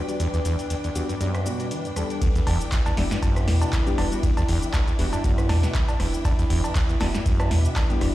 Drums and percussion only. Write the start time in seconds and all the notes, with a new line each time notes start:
0.09 closed hi-hat, shaker
0.20 closed hi-hat, shaker
0.34 closed hi-hat, shaker
0.45 closed hi-hat, shaker
0.59 closed hi-hat, shaker
0.70 closed hi-hat, shaker
0.84 closed hi-hat, shaker
0.95 closed hi-hat, shaker
1.09 closed hi-hat, shaker
1.21 closed hi-hat, shaker
1.35 cross-stick, closed hi-hat, shaker
1.46 closed hi-hat, shaker
1.60 closed hi-hat, shaker
1.71 closed hi-hat, shaker
1.85 closed hi-hat, shaker
1.96 cross-stick, closed hi-hat, shaker
2.10 closed hi-hat, shaker
2.22 kick, closed hi-hat, ride, shaker
2.35 closed hi-hat, shaker
2.47 closed hi-hat, open hi-hat, cowbell
2.61 closed hi-hat, shaker
2.72 kick, snare, clap, closed hi-hat, ride, shaker
2.86 closed hi-hat, cowbell, shaker
2.97 snare, closed hi-hat, open hi-hat
3.11 snare, closed hi-hat, shaker
3.22 kick, closed hi-hat, ride, cowbell, shaker
3.36 cross-stick, closed hi-hat, shaker
3.48 snare, closed hi-hat, open hi-hat
3.62 closed hi-hat, cowbell, shaker
3.73 kick, snare, clap, closed hi-hat, ride, shaker
3.87 closed hi-hat, shaker
3.98 cross-stick, snare, closed hi-hat, open hi-hat, cowbell
4.12 closed hi-hat, shaker
4.23 kick, closed hi-hat, ride, shaker
4.37 closed hi-hat, cowbell, shaker
4.48 closed hi-hat, open hi-hat
4.62 closed hi-hat, shaker
4.73 kick, snare, clap, closed hi-hat, ride, cowbell, shaker
4.88 closed hi-hat, shaker
4.99 closed hi-hat, open hi-hat
5.13 closed hi-hat, cowbell, shaker
5.24 kick, closed hi-hat, ride, shaker
5.38 cross-stick, closed hi-hat, shaker
5.49 snare, closed hi-hat, open hi-hat, cowbell
5.63 snare, closed hi-hat, shaker
5.74 kick, snare, clap, closed hi-hat, ride, shaker
5.88 closed hi-hat, cowbell, shaker
6.00 cross-stick, snare, closed hi-hat, open hi-hat
6.14 closed hi-hat, shaker
6.24 kick, closed hi-hat, ride, cowbell, shaker
6.39 closed hi-hat, shaker
6.50 closed hi-hat, open hi-hat
6.64 cowbell, shaker
6.75 kick, snare, clap, closed hi-hat, ride, shaker
6.89 closed hi-hat, shaker
7.00 snare, closed hi-hat, open hi-hat, cowbell
7.14 snare, shaker
7.26 kick, closed hi-hat, ride, shaker
7.40 cross-stick, closed hi-hat, cowbell, shaker
7.51 snare, closed hi-hat, open hi-hat
7.65 shaker
7.76 kick, snare, clap, closed hi-hat, ride, cowbell, shaker
7.90 closed hi-hat, shaker
8.01 cross-stick, snare, closed hi-hat, open hi-hat